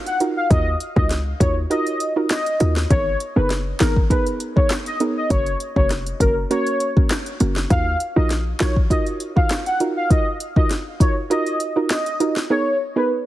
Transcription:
Already playing: synth pluck D#4 F4 F#4 A#4
0.06 soft synth lead F#5, closed hi-hat
0.20 synth pluck D#4 F4 F#4 A#4, closed hi-hat
0.36 soft synth lead F5
0.50 808-style bass D#2, synth pluck D#4 F4 F#4 A#4, soft synth lead D#5, kick, closed hi-hat
0.80 closed hi-hat
0.96 808-style bass C#2, synth pluck D#4 F4 F#4 A#4, soft synth lead D#5, kick
1.11 snare, closed hi-hat
1.40 808-style bass D#2, synth pluck D#4 F4 F#4 A#4, soft synth lead C#5, kick, closed hi-hat
1.70 synth pluck D#4 F4 F#4 A#4, soft synth lead D#5, closed hi-hat
1.87 closed hi-hat
2.00 closed hi-hat
2.16 synth pluck D#4 F4 F#4 A#4
2.30 soft synth lead D#5, snare, clap, closed hi-hat
2.46 closed hi-hat
2.60 808-style bass D#2, synth pluck D#4 F4 F#4 A#4, closed hi-hat
2.76 snare
2.90 808-style bass G#1, synth pluck B3 D#4 G#4 A#4, soft synth lead C#5, kick, closed hi-hat
3.20 closed hi-hat
3.36 808-style bass F#1, synth pluck B3 D#4 G#4 A#4, soft synth lead B4
3.50 snare, closed hi-hat
3.80 808-style bass G#1, synth pluck B3 D#4 G#4 A#4, soft synth lead A#4, snare, clap, closed hi-hat
3.96 kick
4.10 synth pluck B3 D#4 G#4 A#4, soft synth lead B4, kick, closed hi-hat
4.27 closed hi-hat
4.40 closed hi-hat
4.56 synth pluck B3 D#4 G#4 A#4, soft synth lead C#5, kick
4.70 snare, clap, closed hi-hat
4.86 soft synth lead D#5, closed hi-hat
5.00 synth pluck B3 D#4 G#4 A#4, closed hi-hat
5.17 soft synth lead D#5
5.30 808-style bass F#1, synth pluck A#3 C#4 F#4 A#4, soft synth lead C#5, kick, closed hi-hat
5.46 closed hi-hat
5.60 closed hi-hat
5.76 808-style bass F1, synth pluck A#3 C#4 F#4 A#4, soft synth lead C#5, kick
5.91 cross-stick, snare, closed hi-hat
6.06 closed hi-hat
6.20 808-style bass F#1, synth pluck A#3 C#4 F#4 A#4, soft synth lead A#4, kick, closed hi-hat
6.50 synth pluck A#3 C#4 F#4 A#4, soft synth lead C#5, closed hi-hat
6.67 closed hi-hat
6.80 closed hi-hat
6.96 synth pluck A#3 C#4 F#4 A#4, kick
7.11 cross-stick, snare, clap, closed hi-hat
7.26 closed hi-hat
7.40 808-style bass F#1, synth pluck A#3 C#4 F#4 A#4, closed hi-hat
7.56 snare
7.70 808-style bass D#2, synth pluck D#4 F4 F#4 A#4, soft synth lead F5, kick, closed hi-hat
8.00 closed hi-hat
8.16 808-style bass A#1, synth pluck D#4 F4 F#4 A#4, soft synth lead D#5
8.30 snare, closed hi-hat
8.60 808-style bass A#1, synth pluck D#4 F4 F#4 A#4, soft synth lead C#5, snare, clap, closed hi-hat
8.76 kick
8.90 synth pluck D#4 F4 F#4 A#4, soft synth lead D#5, kick, closed hi-hat
9.07 closed hi-hat
9.20 closed hi-hat
9.36 synth pluck D#4 F4 F#4 A#4, soft synth lead F5, kick
9.51 snare, clap, closed hi-hat
9.66 soft synth lead F#5, closed hi-hat
9.80 synth pluck D#4 F4 F#4 A#4, closed hi-hat
9.96 soft synth lead F5
10.10 synth pluck D#4 F4 F#4 A#4, soft synth lead D#5, kick, closed hi-hat
10.40 closed hi-hat
10.56 synth pluck D#4 F4 F#4 A#4, soft synth lead D#5, kick
10.71 snare, closed hi-hat
11.00 synth pluck D#4 F4 F#4 A#4, soft synth lead C#5, kick, closed hi-hat
11.30 synth pluck D#4 F4 F#4 A#4, soft synth lead D#5, closed hi-hat
11.47 closed hi-hat
11.60 closed hi-hat
11.76 synth pluck D#4 F4 F#4 A#4
11.90 soft synth lead D#5, snare, clap, closed hi-hat
12.06 closed hi-hat
12.20 synth pluck D#4 F4 F#4 A#4, closed hi-hat
12.36 snare
12.50 synth pluck B3 D#4 G#4 A#4, soft synth lead C#5
12.96 synth pluck B3 D#4 G#4 A#4, soft synth lead B4

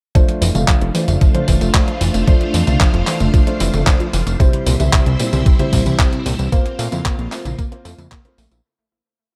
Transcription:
0.15 synth arpeggio sound F3, grand piano A3 D4 F4 C5, string machine A3 D4 F4 C5 F5, kick, closed hi-hat, tambourine
0.28 synth arpeggio sound F3, closed hi-hat
0.41 analog synth bass F1, synth arpeggio sound E3, open hi-hat, tambourine
0.55 analog synth bass F1, synth arpeggio sound A3, grand piano A3 D4 F4 F5, closed hi-hat, high tom, tambourine
0.68 synth arpeggio sound F3, kick, clap, closed hi-hat
0.81 analog synth bass F1, synth arpeggio sound F3, closed hi-hat
0.95 synth arpeggio sound E3, grand piano A3 D4 F4 C5, open hi-hat, tambourine
1.08 analog synth bass F1, synth arpeggio sound A3, closed hi-hat, high tom, tambourine
1.21 synth arpeggio sound F3, kick, closed hi-hat, tambourine
1.34 synth arpeggio sound F3, grand piano A3 D4 F4 C5, closed hi-hat, high tom
1.48 analog synth bass F1, synth arpeggio sound E3, kick, open hi-hat, tambourine
1.61 analog synth bass F1, synth arpeggio sound A3, closed hi-hat, tambourine
1.74 synth arpeggio sound F3, grand piano A3 D4 F4 C5, kick, clap, closed hi-hat, tambourine
1.88 synth arpeggio sound F3, closed hi-hat
2.01 analog synth bass F1, synth arpeggio sound E3, open hi-hat, tambourine
2.14 analog synth bass F1, synth arpeggio sound A3, closed hi-hat, tambourine
2.27 synth arpeggio sound F3, grand piano A3 D4 F4 C5, kick, closed hi-hat, tambourine
2.41 synth arpeggio sound F3, closed hi-hat
2.54 analog synth bass F2, synth arpeggio sound E3, open hi-hat, tambourine
2.67 analog synth bass C2, synth arpeggio sound A3, grand piano A3 D4 F4 F5, closed hi-hat, high tom, tambourine
2.80 synth arpeggio sound F3, kick, clap, closed hi-hat, tambourine
2.94 analog synth bass F1, synth arpeggio sound F3, closed hi-hat
3.07 synth arpeggio sound E3, grand piano A3 D4 F4 C5, clap, open hi-hat, tambourine
3.20 analog synth bass F1, synth arpeggio sound A3, closed hi-hat, high tom, tambourine
3.34 synth arpeggio sound F3, kick, closed hi-hat, tambourine
3.47 synth arpeggio sound F3, grand piano A3 D4 F4 C5, closed hi-hat
3.60 analog synth bass F1, synth arpeggio sound E3, open hi-hat, tambourine
3.73 analog synth bass F1, synth arpeggio sound A3, closed hi-hat, high tom, tambourine
3.87 synth arpeggio sound F3, grand piano A3 D4 F4 C5, kick, clap, closed hi-hat, tambourine
4.00 synth arpeggio sound F3, closed hi-hat
4.13 analog synth bass F1, synth arpeggio sound E3, open hi-hat, tambourine
4.27 analog synth bass F1, synth arpeggio sound A3, closed hi-hat, tambourine
4.40 synth arpeggio sound C3, grand piano G3 C4 E4 C5, string machine G3 C4 E4 C5 E5, kick, closed hi-hat, tambourine
4.53 synth arpeggio sound C3, closed hi-hat
4.66 analog synth bass C2, synth arpeggio sound A#2, open hi-hat, tambourine
4.80 analog synth bass C2, synth arpeggio sound E3, grand piano G3 C4 E4 E5, closed hi-hat, high tom, tambourine
4.93 synth arpeggio sound C3, kick, clap, closed hi-hat, tambourine
5.06 analog synth bass C2, synth arpeggio sound C3, closed hi-hat
5.19 synth arpeggio sound A#2, grand piano G3 C4 E4 C5, open hi-hat, tambourine
5.33 analog synth bass C2, synth arpeggio sound E3, closed hi-hat, high tom, tambourine
5.46 synth arpeggio sound C3, kick, closed hi-hat, tambourine
5.59 synth arpeggio sound C3, grand piano G3 C4 E4 C5, closed hi-hat, high tom
5.73 analog synth bass C2, synth arpeggio sound A#2, kick, open hi-hat, tambourine
5.86 analog synth bass C2, synth arpeggio sound E3, closed hi-hat, tambourine
5.99 synth arpeggio sound C3, grand piano G3 C4 E4 C5, kick, clap, closed hi-hat, tambourine
6.12 synth arpeggio sound C3, closed hi-hat
6.26 analog synth bass C2, synth arpeggio sound A#2, open hi-hat, tambourine
6.39 analog synth bass C2, synth arpeggio sound E3, closed hi-hat, tambourine
6.52 synth arpeggio sound A#3, string machine A#3 F4 F5, grand piano A#3 C4 F4 C5, kick, closed hi-hat, tambourine
6.66 synth arpeggio sound A#3, closed hi-hat
6.79 analog synth bass A#2, synth arpeggio sound A3, open hi-hat, tambourine
6.92 analog synth bass F2, grand piano A#3 C4 F4 F5, synth arpeggio sound E4, closed hi-hat, high tom, tambourine
7.05 synth arpeggio sound A#3, kick, clap, closed hi-hat, tambourine
7.19 analog synth bass A#1, synth arpeggio sound A#3, closed hi-hat
7.32 synth arpeggio sound A3, grand piano A#3 C4 F4 C5, clap, open hi-hat, tambourine
7.45 analog synth bass A#1, synth arpeggio sound E4, closed hi-hat, high tom, tambourine
7.59 synth arpeggio sound A#3, kick, closed hi-hat, tambourine
7.72 synth arpeggio sound A#3, grand piano A#3 C4 F4 C5, closed hi-hat
7.85 analog synth bass F2, synth arpeggio sound A3, grand piano A#3 C4 F4 C5, open hi-hat, tambourine
7.98 analog synth bass F2, synth arpeggio sound E4, closed hi-hat, high tom, tambourine
8.12 synth arpeggio sound A#3, kick, clap, closed hi-hat, tambourine
8.25 synth arpeggio sound A#3, grand piano A#3 C4 F4 C5, closed hi-hat
8.38 analog synth bass A#1, synth arpeggio sound A3, open hi-hat, tambourine
8.51 analog synth bass A#1, synth arpeggio sound E4, closed hi-hat, tambourine

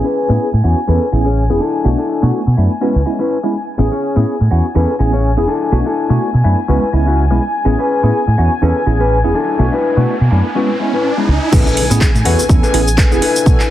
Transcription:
Already playing: string section G#5
0.04 clean electric guitar C#4 G#4 B4
0.29 fingered electric bass A2, tine electric piano B3 C#4 E4 G#4
0.53 fingered electric bass A2
0.64 fingered electric bass E2, tine electric piano B3 C#4 E4 F#4
0.87 fingered electric bass E2, tine electric piano B3 C#4 E4 A4, clean electric guitar C#4 G#4 B4
1.12 fingered electric bass A1, tine electric piano B3 C#4 E4 G#4
1.25 clean electric guitar C#4 G#4 C#5
1.50 fingered electric bass E1, tine electric piano B3 C#4 E4 G#4
1.60 clean electric guitar D4 E4 A4
1.84 fingered electric bass B1, tine electric piano A3 B3 D4 F#4
1.98 clean electric guitar D4 E4 A4
2.22 fingered electric bass B2, tine electric piano A3 B3 D4 F#4
2.47 fingered electric bass B2
2.57 fingered electric bass F#2, tine electric piano A3 B3 D4 E4
2.81 tine electric piano G#3 B3 C#4 F#4, clean electric guitar C#4 E4 B4
2.95 fingered electric bass C#2
3.06 tine electric piano G#3 B3 C#4 E4
3.19 clean electric guitar C#4 E4 B4
3.43 tine electric piano G#3 B3 C#4 E4
3.54 muted clean electric guitar stroke
3.78 fingered electric bass A1, tine electric piano B3 C#4 E4 G#4, string section G#5, muted clean electric guitar stroke
3.91 clean electric guitar C#4 G#4 C#5
4.16 fingered electric bass A2, tine electric piano B3 C#4 E4 G#4
4.41 fingered electric bass A2
4.51 fingered electric bass E2, tine electric piano B3 C#4 E4 F#4
4.75 fingered electric bass E2, tine electric piano B3 C#4 E4 A4, clean electric guitar C#4 G#4 B4
4.99 fingered electric bass A1, tine electric piano B3 C#4 E4 G#4
5.13 clean electric guitar C#4 G#4 C#5
5.37 fingered electric bass E1, tine electric piano B3 C#4 E4 G#4
5.47 clean electric guitar D4 E4 A4
5.72 fingered electric bass B1, tine electric piano A3 B3 D4 F#4
5.85 clean electric guitar D4 E4 A4
6.09 fingered electric bass B2, tine electric piano A3 B3 D4 F#4
6.34 fingered electric bass B2
6.44 fingered electric bass F#2, tine electric piano A3 B3 D4 E4
6.68 fingered electric bass C#2, tine electric piano G#3 B3 C#4 F#4, clean electric guitar C#4 E4 B4
6.93 fingered electric bass C#2, tine electric piano G#3 B3 C#4 E4
7.06 clean electric guitar C#4 E4 F#4
7.30 fingered electric bass B1, tine electric piano G#3 B3 C#4 E4
7.41 muted clean electric guitar stroke
7.65 fingered electric bass A1, tine electric piano B3 C#4 E4 G#4, muted clean electric guitar stroke, riser
7.78 clean electric guitar C#4 G#4 B4
8.03 fingered electric bass A2, tine electric piano B3 C#4 E4 G#4
8.27 fingered electric bass A2
8.38 fingered electric bass E2, tine electric piano B3 C#4 E4 F#4
8.62 fingered electric bass E2, tine electric piano B3 C#4 E4 A4, clean electric guitar C#4 G#4 B4
8.86 fingered electric bass A1, tine electric piano B3 C#4 E4 G#4
9.00 clean electric guitar C#4 G#4 B4
9.24 fingered electric bass E1, tine electric piano B3 C#4 E4 G#4
9.34 clean electric guitar D4 E4 A4
9.59 fingered electric bass B1, tine electric piano A3 B3 D4 F#4
9.72 clean electric guitar D4 E4 B4
9.97 fingered electric bass B2, tine electric piano A3 B3 D4 F#4
10.21 fingered electric bass B2
10.31 fingered electric bass F#2, tine electric piano A3 B3 D4 E4
10.55 tine electric piano G#3 B3 C#4 F#4, clean electric guitar C#4 E4 B4
10.80 tine electric piano G#3 B3 C#4 E4
10.93 clean electric guitar C#4 E4 B4
11.18 tine electric piano G#3 B3 C#4 E4
11.28 fingered electric bass C#2, muted clean electric guitar stroke
11.52 fingered electric bass A1, tine electric piano B3 C#4 E4 G#4, clean electric guitar C#4 G#4 A4 B4, string section G#5, kick, crash, impact, cabasa
11.67 cabasa
11.77 open hi-hat
11.90 fingered electric bass A2, tine electric piano B3 C#4 E4 G#4, cabasa
12.01 kick, clap, cabasa
12.14 fingered electric bass A2, muted clean electric guitar stroke, cabasa
12.25 fingered electric bass E2, tine electric piano B3 C#4 E4 F#4, clean electric guitar C#4 G#4 A4 B4, open hi-hat
12.39 cabasa
12.49 fingered electric bass E2, tine electric piano B3 C#4 E4 A4, kick, cabasa
12.62 clean electric guitar C#4 G#4 A4 B4, cabasa
12.73 fingered electric bass A1, tine electric piano B3 C#4 E4 G#4, open hi-hat
12.88 cabasa
12.97 clean electric guitar C#4 G#4 A4 B4, kick, clap, cabasa
13.11 fingered electric bass E1, tine electric piano B3 C#4 E4 G#4, cabasa
13.21 clean electric guitar D4 E4 A4 B4, open hi-hat
13.36 cabasa
13.46 fingered electric bass B1, tine electric piano B3 D4 F#4 A4, kick, cabasa
13.60 clap, cabasa

